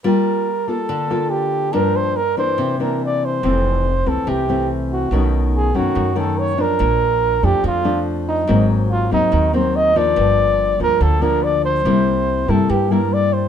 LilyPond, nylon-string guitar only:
\new Staff \with { instrumentName = "Nylon-string guitar" } { \time 4/4 \key g \dorian \tempo 4 = 142 << { <bes f'>4 r8 <bes f' a'>4 <bes f' a'>4. | <f bes d'>4 r8 <e bes d'>4 <e bes d'>4. | <e a c'>4 r8 <e a c'>4 <e a c'>4. | <dis a cis'>4. <dis a cis'>4 <dis a cis'>4 <f d'>8~ |
<f d'>4. <f a d'>4 <f a d'>4. | <ges bes c'>4. <ges bes c'>4 <ges bes c'>4 <f bes d'>8~ | <f bes d'>4. <f bes d'>4 <f bes d'>4. | <g bes e'>4. <g bes e'>4 <g bes e'>4. | } \\ { g2 d2 | g,2 c2 | f,2 c2 | b,2 fis,2 |
bes,2 f,2 | aes,2 ees2 | g,2 d2 | c2 g,2 | } >> }